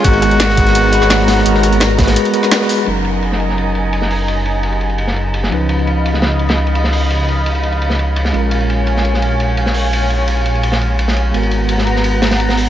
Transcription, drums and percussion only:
0.04 kick loud
0.04 closed hi-hat loud
0.04 ride medium
0.13 ride soft
0.22 cross-stick soft
0.22 closed hi-hat medium
0.22 ride medium
0.31 closed hi-hat soft
0.40 snare loud
0.40 closed hi-hat loud
0.40 ride medium
0.49 snare soft
0.57 kick loud
0.57 closed hi-hat medium
0.57 ride medium
0.67 snare soft
0.67 closed hi-hat soft
0.75 closed hi-hat loud
0.75 ride medium
0.92 closed hi-hat medium
0.92 ride medium
1.02 snare soft
1.10 snare loud
1.10 closed hi-hat loud
1.10 ride medium
1.19 cross-stick soft
1.19 snare medium
1.28 snare loud
1.28 open hi-hat medium
1.28 ride medium
1.38 snare soft
1.46 closed hi-hat loud
1.46 ride medium
1.54 snare soft
1.63 cross-stick soft
1.63 closed hi-hat medium
1.63 ride medium
1.73 closed hi-hat soft
1.80 snare loud
1.80 closed hi-hat loud
1.80 ride loud
1.91 ride soft
1.98 kick loud
1.98 snare loud
1.98 closed hi-hat medium
1.98 ride medium
2.07 snare loud
2.07 closed hi-hat soft
2.07 ride medium
2.16 closed hi-hat loud
2.16 ride medium
2.25 closed hi-hat soft
2.25 ride soft
2.33 closed hi-hat medium
2.33 ride medium
2.43 snare soft
2.51 snare loud
2.51 closed hi-hat loud
2.51 ride medium
2.61 snare soft
2.69 open hi-hat medium
2.69 ride medium
2.78 cross-stick soft
2.86 ride medium
2.97 ride soft
3.05 ride medium
3.22 ride medium
3.32 snare soft
3.40 ride medium
3.49 snare soft
3.58 ride medium
3.75 ride medium
3.93 ride medium
4.02 snare soft
4.10 open hi-hat medium
4.28 ride medium
4.46 ride medium
4.63 ride medium
4.72 ride soft
4.81 ride medium
4.89 ride soft
4.98 ride medium
5.07 snare soft
5.16 ride medium
5.34 ride medium
5.43 snare medium
5.52 ride medium
5.69 ride medium
5.79 ride soft
5.87 ride medium
6.05 ride medium
6.14 snare soft
6.22 snare medium
6.22 ride medium
6.32 ride soft
6.39 ride medium
6.49 snare medium
6.49 ride medium
6.58 ride soft
6.67 ride medium
6.75 ride medium
6.84 snare soft
6.93 open hi-hat medium
7.10 ride medium
7.28 ride medium
7.46 ride medium
7.55 ride soft
7.63 ride medium
7.72 ride soft
7.82 ride medium
7.90 snare medium
7.99 ride medium
8.16 ride medium
8.25 snare soft
8.34 ride medium
8.51 ride medium
8.60 ride soft
8.70 ride medium
8.87 ride medium
8.97 snare soft
9.05 ride medium
9.14 snare soft
9.22 ride medium
9.40 ride medium
9.57 ride medium
9.66 snare soft
9.74 open hi-hat medium
9.93 ride medium
10.10 ride medium
10.28 ride medium
10.37 ride soft
10.46 ride medium
10.55 ride soft
10.63 ride medium
10.72 snare medium
10.81 ride medium
10.99 ride medium
11.08 snare medium
11.16 ride medium
11.34 ride medium
11.43 ride soft
11.51 ride medium
11.69 ride medium
11.78 snare soft
11.87 ride medium
11.96 snare soft
12.04 ride medium
12.22 snare loud
12.22 ride medium
12.31 snare medium
12.31 ride medium
12.40 ride medium
12.49 snare soft
12.57 open hi-hat medium

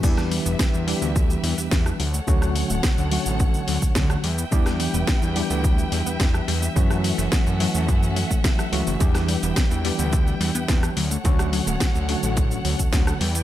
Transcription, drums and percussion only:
0.03 kick loud
0.03 crash medium
0.03 shaker medium
0.17 cross-stick medium
0.17 snare soft
0.17 shaker soft
0.31 open hi-hat loud
0.46 shaker medium
0.59 kick loud
0.59 snare loud
0.59 shaker medium
0.74 shaker soft
0.88 open hi-hat medium
1.02 shaker medium
1.16 kick loud
1.16 shaker medium
1.30 shaker soft
1.44 open hi-hat loud
1.58 shaker medium
1.71 kick loud
1.71 snare loud
1.71 shaker medium
1.86 cross-stick medium
1.86 shaker soft
2.00 open hi-hat medium
2.14 shaker medium
2.28 kick loud
2.28 shaker medium
2.42 cross-stick medium
2.42 shaker soft
2.56 open hi-hat loud
2.70 shaker medium
2.83 kick loud
2.83 snare loud
2.83 shaker medium
2.98 shaker soft
3.11 open hi-hat medium
3.26 shaker medium
3.40 kick loud
3.40 shaker medium
3.54 shaker soft
3.68 open hi-hat loud
3.82 kick medium
3.82 shaker medium
3.95 kick loud
3.95 snare loud
3.95 shaker medium
4.10 cross-stick medium
4.10 shaker soft
4.24 open hi-hat medium
4.38 shaker medium
4.52 kick loud
4.52 shaker medium
4.66 cross-stick medium
4.66 snare soft
4.66 shaker soft
4.80 open hi-hat loud
4.94 shaker medium
5.07 kick loud
5.07 snare loud
5.07 shaker medium
5.22 shaker soft
5.36 open hi-hat medium
5.50 shaker medium
5.64 kick loud
5.64 shaker medium
5.78 shaker soft
5.92 open hi-hat loud
6.07 shaker medium
6.20 kick loud
6.20 snare loud
6.20 shaker soft
6.34 cross-stick medium
6.34 shaker soft
6.48 open hi-hat medium
6.63 shaker medium
6.76 kick loud
6.76 shaker medium
6.91 cross-stick medium
6.91 shaker soft
7.04 open hi-hat loud
7.19 shaker medium
7.32 kick loud
7.32 snare loud
7.32 shaker medium
7.47 shaker soft
7.60 open hi-hat medium
7.75 shaker medium
7.89 kick loud
7.89 shaker medium
8.03 shaker soft
8.16 open hi-hat loud
8.31 kick medium
8.31 shaker medium
8.44 kick loud
8.44 snare loud
8.44 shaker soft
8.59 cross-stick medium
8.59 shaker soft
8.73 open hi-hat medium
8.87 shaker medium
9.00 kick loud
9.00 closed hi-hat medium
9.00 shaker medium
9.14 cross-stick medium
9.14 snare soft
9.14 closed hi-hat soft
9.14 shaker soft
9.28 open hi-hat loud
9.43 closed hi-hat soft
9.43 shaker medium
9.56 kick loud
9.56 snare loud
9.56 closed hi-hat medium
9.56 shaker medium
9.71 shaker soft
9.85 open hi-hat medium
9.99 closed hi-hat soft
9.99 shaker medium
10.13 kick loud
10.13 closed hi-hat medium
10.13 shaker medium
10.27 shaker soft
10.41 open hi-hat loud
10.55 closed hi-hat soft
10.55 shaker medium
10.68 kick loud
10.68 snare loud
10.68 closed hi-hat medium
10.68 shaker medium
10.83 cross-stick medium
10.83 closed hi-hat soft
10.83 shaker soft
10.97 open hi-hat medium
11.11 closed hi-hat soft
11.11 shaker medium
11.25 kick loud
11.25 closed hi-hat medium
11.25 shaker medium
11.39 cross-stick medium
11.39 closed hi-hat soft
11.39 shaker soft
11.53 open hi-hat loud
11.67 closed hi-hat soft
11.67 shaker medium
11.80 kick loud
11.80 snare loud
11.80 closed hi-hat medium
11.80 shaker medium
11.95 shaker soft
12.09 open hi-hat medium
12.23 closed hi-hat medium
12.23 shaker medium
12.37 kick loud
12.37 closed hi-hat medium
12.37 shaker medium
12.51 shaker soft
12.65 open hi-hat loud
12.79 kick medium
12.79 closed hi-hat soft
12.79 shaker medium
12.93 kick loud
12.93 snare loud
12.93 closed hi-hat medium
12.93 shaker medium
13.07 cross-stick medium
13.07 closed hi-hat soft
13.07 shaker soft
13.21 open hi-hat medium
13.35 closed hi-hat soft
13.35 shaker medium

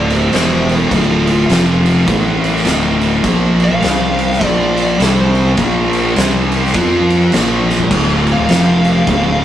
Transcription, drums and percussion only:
0.10 crash medium
0.33 snare loud
0.33 crash medium
0.69 crash medium
0.91 kick loud
0.91 crash medium
1.27 crash medium
1.49 snare loud
1.49 crash medium
1.86 crash medium
2.08 kick loud
2.08 crash medium
2.44 crash medium
2.56 snare soft
2.65 snare loud
2.65 crash medium
3.01 crash medium
3.24 kick loud
3.24 crash medium
3.60 crash medium
3.82 snare loud
3.82 crash medium
4.19 crash medium
4.32 snare soft
4.41 kick loud
4.41 crash medium
4.77 crash medium
5.00 snare loud
5.00 crash medium
5.35 crash medium
5.57 kick loud
5.57 crash medium
5.93 crash medium
6.16 snare loud
6.16 crash medium
6.52 crash medium
6.65 snare soft
6.74 kick loud
6.74 crash medium
7.10 crash medium
7.32 snare loud
7.32 crash medium
7.70 snare medium
7.79 floor tom loud
7.91 kick loud
7.91 crash loud
7.91 crash medium
8.27 crash medium
8.49 snare loud
8.49 crash medium
8.85 crash medium
9.07 kick loud
9.07 crash medium

